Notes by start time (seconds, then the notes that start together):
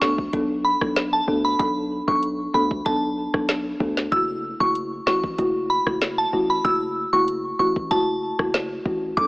0.01 D2 B3 D4 A4 C#6, snare
0.18 kick
0.33 B1 B3 D4 A4, kick, closed hi-hat
0.65 B5
0.81 B1 B3 D4 A4, kick, cross-stick
0.96 snare, closed hi-hat
1.13 A5
1.28 D2 B3 D4 A4
1.45 B5
1.59 B1 B3 D4 A4 B5, kick, closed hi-hat
2.07 B1 B3 D4 A4 C#6, kick
2.23 closed hi-hat
2.54 D2 B3 D4 A4 B5
2.71 kick
2.85 B1 B3 D4 A4 A5, kick, closed hi-hat
3.34 B1 B3 D4 A4, kick, cross-stick
3.49 snare, closed hi-hat
3.80 D2 B3 D4 A4, kick
3.97 snare
4.12 F#1 A3 E4 F#4 E6, kick, closed hi-hat
4.60 F#1 A3 E4 F#4 C#6, kick
4.75 closed hi-hat
5.06 A1 A3 E4 F#4 C#6, snare
5.24 kick
5.38 F#1 A3 E4 F#4, kick, closed hi-hat
5.70 B5
5.86 F#1 A3 E4 F#4, kick, cross-stick
6.01 snare, closed hi-hat
6.18 A5
6.33 A1 A3 E4 F#4
6.50 B5
6.64 F#1 A3 E4 F#4 E6, kick, closed hi-hat
7.13 F#1 A3 E4 F#4 C#6
7.28 closed hi-hat
7.59 A1 A3 E4 F#4 C#6
7.76 kick
7.91 F#1 A3 E4 F#4 A5, kick, closed hi-hat
8.39 F#1 A3 E4 F#4, kick, cross-stick
8.54 snare, closed hi-hat
8.86 A1 A3 E4 F#4, kick
9.17 B1 B3 D4 A4 D6, kick, closed hi-hat